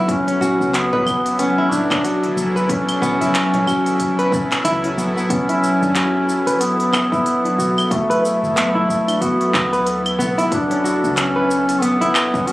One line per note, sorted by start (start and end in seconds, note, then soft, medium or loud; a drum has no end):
0.00 12.52 F#3 medium
0.00 12.52 B3 medium
0.00 12.52 E4 medium
0.00 12.52 A4 medium
0.08 0.54 F#1 loud
0.08 0.75 C#4 loud
0.08 kick loud
0.08 open hi-hat medium
0.08 shaker soft
0.28 0.40 C#4 medium
0.28 open hi-hat soft
0.41 0.91 F#4 medium
0.41 low conga medium
0.41 shaker medium
0.60 1.84 C#2 medium
0.60 shaker soft
0.74 1.40 B3 medium
0.74 clap medium
0.74 open hi-hat medium
0.74 shaker soft
0.93 1.06 B4 medium
0.93 low conga medium
1.06 kick medium
1.06 claves medium
1.06 shaker medium
1.26 open hi-hat soft
1.26 shaker soft
1.39 1.57 B3 loud
1.39 1.73 C#4 loud
1.39 open hi-hat medium
1.39 shaker soft
1.58 1.89 E4 loud
1.71 2.37 D4 loud
1.71 muted conga soft
1.71 low conga medium
1.71 shaker medium
1.91 2.04 C#4 medium
1.91 kick loud
1.91 clap medium
1.91 open hi-hat soft
1.91 claves medium
1.91 shaker soft
2.04 2.54 F#4 medium
2.04 open hi-hat medium
2.04 shaker soft
2.24 open hi-hat soft
2.24 high conga soft
2.37 3.15 A1 medium
2.37 shaker medium
2.56 2.69 B4 loud
2.56 shaker soft
2.69 4.61 C#4 loud
2.69 kick loud
2.69 open hi-hat medium
2.69 shaker soft
2.89 open hi-hat soft
2.89 claves medium
3.01 3.20 B3 loud
3.01 high conga medium
3.01 low conga medium
3.01 shaker medium
3.21 4.28 E1 loud
3.21 3.52 E4 medium
3.21 open hi-hat soft
3.21 shaker soft
3.35 clap medium
3.35 open hi-hat medium
3.35 shaker soft
3.54 3.66 C#4 medium
3.54 open hi-hat soft
3.54 low conga loud
3.67 4.17 F#4 medium
3.67 kick medium
3.67 claves medium
3.67 shaker medium
3.86 open hi-hat soft
3.86 muted conga soft
3.86 shaker soft
4.00 kick medium
4.00 open hi-hat medium
4.00 shaker soft
4.19 4.32 B4 medium
4.19 open hi-hat soft
4.32 4.47 F#1 medium
4.32 kick loud
4.32 high conga soft
4.32 low conga medium
4.32 shaker medium
4.52 clap medium
4.52 open hi-hat soft
4.52 shaker soft
4.65 4.92 C#2 medium
4.65 4.83 E4 loud
4.65 open hi-hat medium
4.65 muted conga soft
4.65 shaker soft
4.84 4.92 C#4 medium
4.84 open hi-hat soft
4.97 5.13 A1 medium
4.97 5.15 B3 medium
4.97 shaker medium
5.16 5.24 B3 medium
5.16 shaker soft
5.30 5.76 B1 loud
5.30 5.48 B3 loud
5.30 6.62 C#4 loud
5.30 kick loud
5.30 open hi-hat medium
5.30 shaker soft
5.49 5.80 E4 loud
5.49 open hi-hat soft
5.64 shaker medium
5.82 7.06 F#1 loud
5.82 5.95 D4 medium
5.82 shaker soft
5.95 6.45 F#4 medium
5.95 clap medium
5.95 open hi-hat medium
5.95 shaker soft
6.29 shaker medium
6.47 6.60 B4 loud
6.47 open hi-hat soft
6.47 shaker soft
6.60 7.93 B3 loud
6.60 open hi-hat medium
6.60 shaker soft
6.80 open hi-hat soft
6.93 7.11 B3 medium
6.93 clap medium
6.93 claves medium
6.93 shaker medium
7.12 7.43 E4 medium
7.12 kick loud
7.12 shaker soft
7.26 open hi-hat medium
7.26 shaker soft
7.45 7.58 D4 medium
7.45 open hi-hat soft
7.58 8.37 B1 medium
7.58 8.08 F#4 medium
7.58 shaker medium
7.78 claves medium
7.78 shaker soft
7.91 9.24 A3 loud
7.91 kick loud
7.91 open hi-hat medium
7.91 shaker soft
8.10 8.23 B4 loud
8.10 open hi-hat soft
8.25 shaker medium
8.43 9.50 F#1 loud
8.43 shaker soft
8.56 8.74 B3 medium
8.56 clap medium
8.56 open hi-hat medium
8.56 shaker soft
8.75 9.06 E4 loud
8.89 kick medium
8.89 shaker medium
9.08 9.21 D4 medium
9.08 open hi-hat soft
9.08 claves medium
9.08 shaker soft
9.21 10.20 B3 medium
9.21 9.71 F#4 medium
9.21 kick medium
9.21 open hi-hat medium
9.21 shaker soft
9.41 open hi-hat soft
9.54 10.15 D2 medium
9.54 kick loud
9.54 clap medium
9.54 shaker medium
9.73 9.86 B4 loud
9.73 open hi-hat soft
9.73 shaker soft
9.87 open hi-hat medium
9.87 shaker soft
10.06 open hi-hat soft
10.06 claves medium
10.19 10.46 B1 medium
10.19 10.37 B3 medium
10.19 shaker medium
10.38 10.52 E4 loud
10.38 open hi-hat soft
10.38 shaker soft
10.52 10.97 F#1 loud
10.52 11.18 D4 loud
10.52 kick loud
10.52 open hi-hat medium
10.52 shaker soft
10.71 10.84 C#4 medium
10.71 open hi-hat soft
10.84 11.34 F#4 medium
10.84 shaker medium
11.04 12.28 C#2 loud
11.04 shaker soft
11.17 11.84 C#4 medium
11.17 clap medium
11.17 open hi-hat medium
11.17 shaker soft
11.36 11.49 B4 loud
11.51 shaker medium
11.69 open hi-hat soft
11.69 shaker soft
11.82 12.00 B3 loud
11.82 12.48 B3 loud
11.82 open hi-hat medium
11.82 shaker soft
12.01 12.32 E4 loud
12.01 open hi-hat soft
12.15 clap medium
12.15 claves medium
12.15 shaker medium
12.34 12.47 C#4 medium
12.34 kick loud
12.34 shaker soft
12.47 12.52 C#4 loud
12.47 12.52 F#4 medium
12.47 open hi-hat medium
12.47 shaker soft